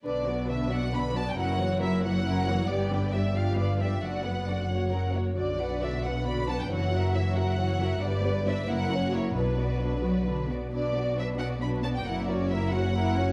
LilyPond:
<<
  \new Staff \with { instrumentName = "Violin section" } { \time 6/8 \key b \minor \tempo 4. = 90 d''4 e''8 fis''8 b''8 a''16 g''16 | fis''4 e''8 fis''4. | d''4 e''8 f''8 d''8 e''8 | fis''2~ fis''8 r8 |
d''4 e''8 fis''8 b''8 a''16 g''16 | fis''4 e''8 fis''4. | d''4 e''8 fis''4 cis''8 | b'2~ b'8 r8 |
d''4 e''8 fis''8 b''8 a''16 g''16 | fis''8 d''8 e''8 fis''4. | }
  \new Staff \with { instrumentName = "Violin section" } { \time 6/8 \key b \minor <d' b'>8 <fis' d''>8 <d' b'>8 <fis' d''>8 <d' b'>8 <fis' d''>8 | <e' ais'>8 <fis' cis''>8 <e' ais'>8 <fis' cis''>8 <e' ais'>8 <fis' cis''>8 | <g' d''>8 <b' g''>8 <g' d''>8 <g' d''>8 <b' f''>8 <g' d''>8 | <fis' d''>8 <b' fis''>8 <fis' d''>8 cis''8 <ais' fis''>8 cis''8 |
d''8 <b' fis''>8 d''8 <b' fis''>8 d''8 <b' fis''>8 | <fis' cis''>8 <ais' e''>8 <fis' cis''>8 <ais' e''>8 <fis' cis''>8 <ais' e''>8 | <b' d''>8 <b' d''>8 <b' d''>8 <e' ais'>8 <fis' cis''>8 <e' ais'>8 | <d' b'>8 <fis' d''>8 <d' b'>8 <fis' d''>8 <d' b'>8 <fis' d''>8 |
<d' b'>8 <fis' d''>8 <d' b'>8 <fis' d''>8 <d' b'>8 <fis' d''>8 | <e' ais'>8 <fis' cis''>8 <e' ais'>8 <fis' cis''>8 <e' ais'>8 <fis' cis''>8 | }
  \new Staff \with { instrumentName = "Viola section" } { \time 6/8 \key b \minor <d d'>8 <fis b>8 <d d'>8 <fis b>8 <d d'>8 <fis b>8 | <fis cis'>8 <e ais>8 <fis cis'>8 <e ais>8 <fis cis'>8 <e ais>8 | <g b>8 <d d'>8 <g b>8 <f d'>8 <d b>8 <f d'>8 | <d d'>8 <fis b>8 <d d'>8 <ais fis'>8 <fis cis'>8 <ais fis'>8 |
<d fis'>8 <fis d'>8 <d fis'>8 <fis d'>8 <d fis'>8 <fis d'>8 | <e e'>8 <fis fis'>8 <e e'>8 <fis fis'>8 <e e'>8 <fis fis'>8 | <g d'>8 <b g'>8 <g d'>8 <ais e'>8 <cis' fis'>8 <ais e'>8 | <fis d'>8 b8 <fis d'>8 b8 <fis d'>8 b8 |
<fis d'>8 b8 <fis d'>8 b8 <fis d'>8 b8 | <ais e'>8 <cis' fis'>8 <ais e'>8 <cis' fis'>8 <ais e'>8 <cis' fis'>8 | }
  \new Staff \with { instrumentName = "Cello section" } { \clef bass \time 6/8 \key b \minor b,2. | fis,2. | g,2. | fis,2~ fis,8 r8 |
b,2. | fis,2. | g,4. fis,4. | b,4. fis8 d8 b,8 |
b,2. | fis,2. | }
  \new Staff \with { instrumentName = "Double bass section" } { \clef bass \time 6/8 \key b \minor b,,2. | fis,,2. | g,,2. | fis,,2~ fis,,8 r8 |
b,,2. | fis,,2. | g,,4. fis,,4. | b,,2~ b,,8 r8 |
b,,2. | fis,,2. | }
>>